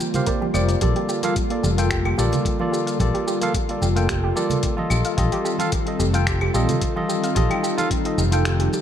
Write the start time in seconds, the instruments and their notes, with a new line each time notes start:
Already playing: analog synth pad D3 G3 A#3 C4 F4
0.00 synth pluck G5, high conga, shaker
0.14 tine electric piano A#3 G4 C5 F5, closed hi-hat, low conga, shaker
0.26 tine electric piano A#3 G4 C5 D5, synth pluck A#4, kick, closed hi-hat, shaker
0.41 synth pluck G4, high conga
0.54 fretless electric bass F1, tine electric piano A#3 G4 C5 D5, synth pluck D5, claves, shaker
0.69 synth pluck D5, closed hi-hat, shaker
0.81 fretless electric bass A#1, analog synth pad D3 A4, tine electric piano A#3 F4 A4 D5, synth pluck G4, kick, closed hi-hat, high conga, shaker
0.96 synth pluck G4, closed hi-hat
1.09 synth pluck G4, shaker
1.23 tine electric piano A#3 F4 A4 F5, closed hi-hat, high conga, shaker
1.36 kick, closed hi-hat, shaker
1.50 tine electric piano A#3 F4 A4 D5, closed hi-hat
1.63 fretless electric bass F1, synth pluck G4, high conga, shaker
1.78 tine electric piano A#3 F4 A4 G5, synth pluck F5, closed hi-hat, shaker
1.91 synth pluck G4, finger snap, kick, closed hi-hat, shaker
2.05 synth pluck G4, claves
2.17 fretless electric bass A#1, tine electric piano A#3 F4 A4 D5, synth pluck G4, high conga, shaker
2.32 closed hi-hat, low conga, shaker
2.45 kick, closed hi-hat, shaker
2.59 tine electric piano A#3 F4 A4 D5, high conga
2.72 synth pluck G4, shaker
2.87 synth pluck F5, closed hi-hat, shaker
2.99 fretless electric bass A#1, tine electric piano A#3 F4 A4 D5, synth pluck G4, kick, closed hi-hat, high conga, shaker
3.14 synth pluck G4, closed hi-hat
3.27 synth pluck G4, shaker
3.41 tine electric piano A#3 F4 A4 F5, closed hi-hat, high conga, shaker
3.54 kick, closed hi-hat, shaker
3.69 tine electric piano A#3 F4 A4 D5, closed hi-hat
3.81 fretless electric bass F1, synth pluck G4, high conga, shaker
3.95 tine electric piano A#3 F4 A4 G5, synth pluck F5, closed hi-hat, shaker
4.09 synth pluck G4, finger snap, kick, closed hi-hat, shaker
4.24 synth pluck G4
4.35 tine electric piano A#3 F4 A4 D5, synth pluck G4, high conga, shaker
4.50 closed hi-hat, low conga, shaker
4.63 kick, closed hi-hat, shaker
4.77 tine electric piano F4 A4 D#5, high conga
4.90 fretless electric bass A#1, analog synth pad D#3 G3 C4, synth pluck G4, claves, shaker
5.05 synth pluck F5, closed hi-hat, shaker
5.17 fretless electric bass A#1, tine electric piano F4 A4 D#5, synth pluck G4, kick, closed hi-hat, high conga, shaker
5.32 synth pluck G4, closed hi-hat
5.45 synth pluck G4, shaker
5.58 tine electric piano F4 A4 F5, closed hi-hat, high conga, shaker
5.72 kick, closed hi-hat, shaker
5.86 tine electric piano F4 A4 D#5, closed hi-hat
5.99 fretless electric bass F1, synth pluck G4, high conga, shaker
6.13 tine electric piano F4 A4 G5, synth pluck F5, closed hi-hat, shaker
6.27 synth pluck G4, finger snap, kick, closed hi-hat, shaker
6.41 synth pluck G4, claves
6.54 fretless electric bass A#1, tine electric piano F4 A4 D#5, synth pluck G4, high conga, shaker
6.69 closed hi-hat, low conga, shaker
6.81 kick, closed hi-hat, shaker
6.96 tine electric piano F4 A4 D#5, high conga
7.08 analog synth pad D#4, synth pluck G4, shaker
7.24 synth pluck F5, closed hi-hat, shaker
7.35 fretless electric bass A#1, tine electric piano F4 A4 D#5, synth pluck G4, kick, closed hi-hat, high conga, shaker
7.50 synth pluck G4, closed hi-hat, claves
7.63 synth pluck G4, shaker
7.78 tine electric piano F4 A4 F5, closed hi-hat, high conga, shaker
7.91 kick, closed hi-hat, shaker
8.05 tine electric piano F4 A4 D#5, closed hi-hat
8.18 fretless electric bass F1, synth pluck G4, high conga, shaker
8.31 tine electric piano F4 A4 G5, synth pluck F5, closed hi-hat, shaker
8.45 synth pluck G4, finger snap, closed hi-hat, shaker
8.60 synth pluck G4, closed hi-hat
8.73 synth pluck G4, high conga, shaker